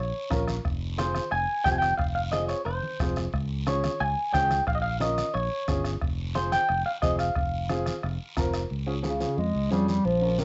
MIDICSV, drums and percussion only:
0, 0, Header, 1, 3, 480
1, 0, Start_track
1, 0, Key_signature, -4, "minor"
1, 0, Tempo, 335758
1, 928, Time_signature, 4, 2, 24, 8
1, 14929, End_track
2, 0, Start_track
2, 0, Title_t, "Two-headed folk drums"
2, 437, Note_on_c, 9, 37, 77
2, 443, Note_on_c, 9, 36, 79
2, 580, Note_off_c, 9, 37, 0
2, 586, Note_off_c, 9, 36, 0
2, 680, Note_on_c, 9, 37, 71
2, 823, Note_off_c, 9, 37, 0
2, 927, Note_on_c, 9, 36, 76
2, 929, Note_on_c, 9, 37, 69
2, 1070, Note_off_c, 9, 36, 0
2, 1072, Note_off_c, 9, 37, 0
2, 1413, Note_on_c, 9, 37, 78
2, 1556, Note_off_c, 9, 37, 0
2, 1640, Note_on_c, 9, 37, 75
2, 1783, Note_off_c, 9, 37, 0
2, 1876, Note_on_c, 9, 37, 69
2, 2019, Note_off_c, 9, 37, 0
2, 2360, Note_on_c, 9, 37, 73
2, 2364, Note_on_c, 9, 36, 78
2, 2503, Note_off_c, 9, 37, 0
2, 2507, Note_off_c, 9, 36, 0
2, 2606, Note_on_c, 9, 37, 67
2, 2749, Note_off_c, 9, 37, 0
2, 2845, Note_on_c, 9, 36, 73
2, 2848, Note_on_c, 9, 37, 74
2, 2988, Note_off_c, 9, 36, 0
2, 2991, Note_off_c, 9, 37, 0
2, 3327, Note_on_c, 9, 37, 84
2, 3470, Note_off_c, 9, 37, 0
2, 3564, Note_on_c, 9, 37, 74
2, 3707, Note_off_c, 9, 37, 0
2, 3807, Note_on_c, 9, 37, 75
2, 3950, Note_off_c, 9, 37, 0
2, 4284, Note_on_c, 9, 36, 75
2, 4290, Note_on_c, 9, 37, 79
2, 4427, Note_off_c, 9, 36, 0
2, 4433, Note_off_c, 9, 37, 0
2, 4531, Note_on_c, 9, 37, 72
2, 4674, Note_off_c, 9, 37, 0
2, 4764, Note_on_c, 9, 36, 69
2, 4768, Note_on_c, 9, 37, 73
2, 4907, Note_off_c, 9, 36, 0
2, 4911, Note_off_c, 9, 37, 0
2, 5242, Note_on_c, 9, 37, 81
2, 5385, Note_off_c, 9, 37, 0
2, 5486, Note_on_c, 9, 37, 72
2, 5629, Note_off_c, 9, 37, 0
2, 5721, Note_on_c, 9, 37, 77
2, 5864, Note_off_c, 9, 37, 0
2, 6202, Note_on_c, 9, 36, 75
2, 6205, Note_on_c, 9, 37, 78
2, 6345, Note_off_c, 9, 36, 0
2, 6348, Note_off_c, 9, 37, 0
2, 6442, Note_on_c, 9, 37, 70
2, 6585, Note_off_c, 9, 37, 0
2, 6675, Note_on_c, 9, 37, 70
2, 6679, Note_on_c, 9, 36, 76
2, 6817, Note_off_c, 9, 37, 0
2, 6822, Note_off_c, 9, 36, 0
2, 7165, Note_on_c, 9, 37, 83
2, 7308, Note_off_c, 9, 37, 0
2, 7406, Note_on_c, 9, 37, 71
2, 7549, Note_off_c, 9, 37, 0
2, 7644, Note_on_c, 9, 37, 70
2, 7787, Note_off_c, 9, 37, 0
2, 8122, Note_on_c, 9, 36, 76
2, 8122, Note_on_c, 9, 37, 77
2, 8265, Note_off_c, 9, 36, 0
2, 8265, Note_off_c, 9, 37, 0
2, 8356, Note_on_c, 9, 37, 67
2, 8499, Note_off_c, 9, 37, 0
2, 8598, Note_on_c, 9, 37, 72
2, 8600, Note_on_c, 9, 36, 76
2, 8741, Note_off_c, 9, 37, 0
2, 8743, Note_off_c, 9, 36, 0
2, 9077, Note_on_c, 9, 37, 78
2, 9220, Note_off_c, 9, 37, 0
2, 9321, Note_on_c, 9, 37, 71
2, 9464, Note_off_c, 9, 37, 0
2, 9559, Note_on_c, 9, 37, 70
2, 9702, Note_off_c, 9, 37, 0
2, 10033, Note_on_c, 9, 37, 77
2, 10040, Note_on_c, 9, 36, 75
2, 10176, Note_off_c, 9, 37, 0
2, 10183, Note_off_c, 9, 36, 0
2, 10276, Note_on_c, 9, 37, 74
2, 10419, Note_off_c, 9, 37, 0
2, 10513, Note_on_c, 9, 37, 77
2, 10520, Note_on_c, 9, 36, 78
2, 10656, Note_off_c, 9, 37, 0
2, 10663, Note_off_c, 9, 36, 0
2, 10998, Note_on_c, 9, 37, 83
2, 11141, Note_off_c, 9, 37, 0
2, 11237, Note_on_c, 9, 37, 76
2, 11379, Note_off_c, 9, 37, 0
2, 11483, Note_on_c, 9, 37, 75
2, 11626, Note_off_c, 9, 37, 0
2, 11961, Note_on_c, 9, 37, 81
2, 11963, Note_on_c, 9, 36, 75
2, 12104, Note_off_c, 9, 37, 0
2, 12106, Note_off_c, 9, 36, 0
2, 12204, Note_on_c, 9, 37, 74
2, 12347, Note_off_c, 9, 37, 0
2, 14929, End_track
3, 0, Start_track
3, 0, Title_t, "Drums"
3, 216, Note_on_c, 9, 63, 34
3, 359, Note_off_c, 9, 63, 0
3, 452, Note_on_c, 9, 73, 62
3, 456, Note_on_c, 9, 63, 72
3, 595, Note_off_c, 9, 73, 0
3, 599, Note_off_c, 9, 63, 0
3, 688, Note_on_c, 9, 73, 64
3, 693, Note_on_c, 9, 63, 63
3, 831, Note_off_c, 9, 73, 0
3, 836, Note_off_c, 9, 63, 0
3, 936, Note_on_c, 9, 74, 66
3, 937, Note_on_c, 9, 63, 28
3, 1079, Note_off_c, 9, 74, 0
3, 1080, Note_off_c, 9, 63, 0
3, 1409, Note_on_c, 9, 73, 67
3, 1420, Note_on_c, 9, 63, 87
3, 1552, Note_off_c, 9, 73, 0
3, 1563, Note_off_c, 9, 63, 0
3, 1654, Note_on_c, 9, 73, 71
3, 1655, Note_on_c, 9, 63, 65
3, 1797, Note_off_c, 9, 73, 0
3, 1798, Note_off_c, 9, 63, 0
3, 1896, Note_on_c, 9, 74, 57
3, 2039, Note_off_c, 9, 74, 0
3, 2142, Note_on_c, 9, 63, 31
3, 2285, Note_off_c, 9, 63, 0
3, 2372, Note_on_c, 9, 73, 64
3, 2375, Note_on_c, 9, 63, 74
3, 2515, Note_off_c, 9, 73, 0
3, 2518, Note_off_c, 9, 63, 0
3, 2603, Note_on_c, 9, 73, 64
3, 2607, Note_on_c, 9, 63, 65
3, 2746, Note_off_c, 9, 73, 0
3, 2750, Note_off_c, 9, 63, 0
3, 2841, Note_on_c, 9, 74, 68
3, 2855, Note_on_c, 9, 63, 33
3, 2984, Note_off_c, 9, 74, 0
3, 2998, Note_off_c, 9, 63, 0
3, 3325, Note_on_c, 9, 73, 66
3, 3328, Note_on_c, 9, 63, 85
3, 3467, Note_off_c, 9, 73, 0
3, 3471, Note_off_c, 9, 63, 0
3, 3558, Note_on_c, 9, 73, 64
3, 3701, Note_off_c, 9, 73, 0
3, 3797, Note_on_c, 9, 74, 57
3, 3940, Note_off_c, 9, 74, 0
3, 4048, Note_on_c, 9, 63, 64
3, 4191, Note_off_c, 9, 63, 0
3, 4280, Note_on_c, 9, 73, 59
3, 4291, Note_on_c, 9, 64, 74
3, 4422, Note_off_c, 9, 73, 0
3, 4434, Note_off_c, 9, 64, 0
3, 4520, Note_on_c, 9, 73, 66
3, 4530, Note_on_c, 9, 64, 68
3, 4663, Note_off_c, 9, 73, 0
3, 4673, Note_off_c, 9, 64, 0
3, 4759, Note_on_c, 9, 74, 64
3, 4768, Note_on_c, 9, 63, 33
3, 4902, Note_off_c, 9, 74, 0
3, 4911, Note_off_c, 9, 63, 0
3, 5239, Note_on_c, 9, 73, 63
3, 5251, Note_on_c, 9, 63, 80
3, 5382, Note_off_c, 9, 73, 0
3, 5394, Note_off_c, 9, 63, 0
3, 5484, Note_on_c, 9, 73, 73
3, 5491, Note_on_c, 9, 63, 69
3, 5627, Note_off_c, 9, 73, 0
3, 5634, Note_off_c, 9, 63, 0
3, 5725, Note_on_c, 9, 74, 57
3, 5868, Note_off_c, 9, 74, 0
3, 5970, Note_on_c, 9, 63, 30
3, 6113, Note_off_c, 9, 63, 0
3, 6202, Note_on_c, 9, 63, 75
3, 6206, Note_on_c, 9, 73, 65
3, 6345, Note_off_c, 9, 63, 0
3, 6349, Note_off_c, 9, 73, 0
3, 6440, Note_on_c, 9, 63, 66
3, 6445, Note_on_c, 9, 73, 64
3, 6583, Note_off_c, 9, 63, 0
3, 6588, Note_off_c, 9, 73, 0
3, 6683, Note_on_c, 9, 74, 57
3, 6684, Note_on_c, 9, 63, 32
3, 6826, Note_off_c, 9, 74, 0
3, 6827, Note_off_c, 9, 63, 0
3, 7157, Note_on_c, 9, 63, 87
3, 7163, Note_on_c, 9, 73, 69
3, 7300, Note_off_c, 9, 63, 0
3, 7306, Note_off_c, 9, 73, 0
3, 7404, Note_on_c, 9, 73, 71
3, 7406, Note_on_c, 9, 63, 64
3, 7547, Note_off_c, 9, 73, 0
3, 7549, Note_off_c, 9, 63, 0
3, 7638, Note_on_c, 9, 74, 62
3, 7781, Note_off_c, 9, 74, 0
3, 7893, Note_on_c, 9, 63, 33
3, 8036, Note_off_c, 9, 63, 0
3, 8118, Note_on_c, 9, 73, 66
3, 8121, Note_on_c, 9, 63, 73
3, 8261, Note_off_c, 9, 73, 0
3, 8264, Note_off_c, 9, 63, 0
3, 8362, Note_on_c, 9, 73, 62
3, 8505, Note_off_c, 9, 73, 0
3, 8602, Note_on_c, 9, 63, 32
3, 8602, Note_on_c, 9, 74, 57
3, 8745, Note_off_c, 9, 63, 0
3, 8745, Note_off_c, 9, 74, 0
3, 9083, Note_on_c, 9, 63, 74
3, 9083, Note_on_c, 9, 73, 72
3, 9226, Note_off_c, 9, 63, 0
3, 9226, Note_off_c, 9, 73, 0
3, 9324, Note_on_c, 9, 73, 68
3, 9327, Note_on_c, 9, 63, 68
3, 9467, Note_off_c, 9, 73, 0
3, 9470, Note_off_c, 9, 63, 0
3, 9558, Note_on_c, 9, 74, 57
3, 9701, Note_off_c, 9, 74, 0
3, 9803, Note_on_c, 9, 63, 31
3, 9946, Note_off_c, 9, 63, 0
3, 10042, Note_on_c, 9, 73, 62
3, 10051, Note_on_c, 9, 63, 76
3, 10185, Note_off_c, 9, 73, 0
3, 10194, Note_off_c, 9, 63, 0
3, 10282, Note_on_c, 9, 73, 66
3, 10425, Note_off_c, 9, 73, 0
3, 10525, Note_on_c, 9, 63, 35
3, 10525, Note_on_c, 9, 74, 64
3, 10668, Note_off_c, 9, 63, 0
3, 10668, Note_off_c, 9, 74, 0
3, 10999, Note_on_c, 9, 63, 84
3, 11006, Note_on_c, 9, 73, 64
3, 11142, Note_off_c, 9, 63, 0
3, 11149, Note_off_c, 9, 73, 0
3, 11243, Note_on_c, 9, 73, 73
3, 11250, Note_on_c, 9, 63, 64
3, 11386, Note_off_c, 9, 73, 0
3, 11392, Note_off_c, 9, 63, 0
3, 11490, Note_on_c, 9, 74, 63
3, 11633, Note_off_c, 9, 74, 0
3, 11728, Note_on_c, 9, 63, 29
3, 11871, Note_off_c, 9, 63, 0
3, 11962, Note_on_c, 9, 73, 65
3, 11967, Note_on_c, 9, 63, 71
3, 12105, Note_off_c, 9, 73, 0
3, 12110, Note_off_c, 9, 63, 0
3, 12201, Note_on_c, 9, 73, 71
3, 12344, Note_off_c, 9, 73, 0
3, 12441, Note_on_c, 9, 74, 61
3, 12451, Note_on_c, 9, 63, 27
3, 12583, Note_off_c, 9, 74, 0
3, 12594, Note_off_c, 9, 63, 0
3, 12919, Note_on_c, 9, 73, 59
3, 12927, Note_on_c, 9, 63, 86
3, 13062, Note_off_c, 9, 73, 0
3, 13070, Note_off_c, 9, 63, 0
3, 13160, Note_on_c, 9, 73, 62
3, 13169, Note_on_c, 9, 63, 63
3, 13303, Note_off_c, 9, 73, 0
3, 13312, Note_off_c, 9, 63, 0
3, 13411, Note_on_c, 9, 74, 53
3, 13554, Note_off_c, 9, 74, 0
3, 13649, Note_on_c, 9, 63, 30
3, 13792, Note_off_c, 9, 63, 0
3, 13891, Note_on_c, 9, 63, 67
3, 13892, Note_on_c, 9, 73, 58
3, 14034, Note_off_c, 9, 63, 0
3, 14035, Note_off_c, 9, 73, 0
3, 14130, Note_on_c, 9, 73, 67
3, 14131, Note_on_c, 9, 63, 61
3, 14273, Note_off_c, 9, 73, 0
3, 14274, Note_off_c, 9, 63, 0
3, 14366, Note_on_c, 9, 74, 63
3, 14509, Note_off_c, 9, 74, 0
3, 14846, Note_on_c, 9, 63, 72
3, 14848, Note_on_c, 9, 73, 67
3, 14929, Note_off_c, 9, 63, 0
3, 14929, Note_off_c, 9, 73, 0
3, 14929, End_track
0, 0, End_of_file